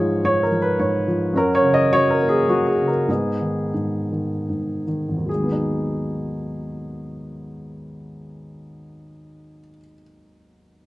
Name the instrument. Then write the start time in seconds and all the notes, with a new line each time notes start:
grand piano
Already playing: G#2 F3 F4 G#4 C#5
0.24 G#2 C#5
0.43 A#4
0.51 F3
0.62 B4
0.79 G#2 C#5
1.07 F3
1.33 F#2 C#4 F#4 A#4
1.55 C#5
1.63 C#3
1.74 D#5
1.92 F#3 C#5
2.10 A#4
2.21 A#3
2.29 G#4
2.48 F#3 F#4
2.67 G#4
2.80 C#3
2.88 A#4
3.08 G#2 B3 D#4 G#4
3.41 D#3
3.74 G#2
4.12 D#3
4.50 G#2
4.87 D#3
5.08 G#1
5.17 D#2
5.26 F#3 G#4
5.34 G#3
5.43 B3
5.52 D#4